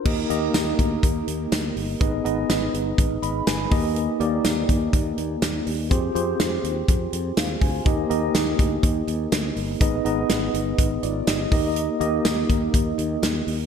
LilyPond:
<<
  \new Staff \with { instrumentName = "Tine electric piano" } { \time 4/4 \key ees \major \tempo 4 = 123 << { r1 | r2 r8 <ees'' ces'''>8 <ces'' aes''>4 | r1 | r2. <aes' f''>8 <c'' aes''>8~ |
<c'' aes''>8 r2. r8 | r2 r8 <f' d''>8 <g' ees''>4 | r1 | } \\ { <bes ees' g' bes' ees''>8 <bes ees' g' bes' ees''>4. r2 | <ces' ees' aes' ces'' ees''>8 <ces' ees' aes' ces'' ees''>4. r4. <bes ees' g' bes' ees''>8~ | <bes ees' g' bes' ees''>8 <bes ees' g' bes' d''>4. r2 | <c' f' g' aes' c''>8 <c' f' g' aes' c''>4. r2 |
<bes ees' g' bes' ees''>8 <bes ees' g' bes' ees''>4. r2 | <ces' ees' aes' ces'' ees''>8 <ces' ees' aes' ces'' ees''>4. r4. <bes ees' g' bes' ees''>8~ | <bes ees' g' bes' ees''>8 <bes ees' g' bes' ees''>4. r2 | } >> }
  \new Staff \with { instrumentName = "Fingered electric bass" } { \clef bass \time 4/4 \key ees \major ees,8 ees,8 ees,8 d,8 ees,8 ees,8 d,8 g,,8 | aes,,8 aes,,8 aes,,8 g,,8 aes,,8 aes,,8 g,,8 ees,8~ | ees,8 ees,8 ees,8 ees,8 ees,8 ees,8 ees,8 ees,8 | f,8 f,8 f,8 ees,8 f,8 f,8 ees,8 d,8 |
ees,8 ees,8 ees,8 d,8 ees,8 ees,8 d,8 g,,8 | aes,,8 aes,,8 aes,,8 g,,8 aes,,8 aes,,8 g,,8 ees,8~ | ees,8 ees,8 ees,8 ees,8 ees,8 ees,8 ees,8 ees,8 | }
  \new DrumStaff \with { instrumentName = "Drums" } \drummode { \time 4/4 <cymc bd>8 hh8 <hh sn tamb>8 <hh bd>8 <hh bd>8 hh8 <hh sn tamb>8 hho8 | <hh bd>8 hh8 <hh sn tamb>8 hh8 <hh bd>8 hh8 <hh sn tamb>8 <hho bd>8 | hh8 hh8 <hh sn tamb>8 <hh bd>8 <hh bd>8 hh8 <hh sn tamb>8 hho8 | <hh bd>8 hh8 <hh sn tamb>8 hh8 <hh bd>8 hh8 <hh sn tamb>8 <hho bd>8 |
<hh bd>8 hh8 <hh sn tamb>8 <hh bd>8 <hh bd>8 hh8 <hh sn tamb>8 hho8 | <hh bd>8 hh8 <hh sn tamb>8 hh8 <hh bd>8 hh8 <hh sn tamb>8 <hho bd>8 | hh8 hh8 <hh sn tamb>8 <hh bd>8 <hh bd>8 hh8 <hh sn tamb>8 hho8 | }
>>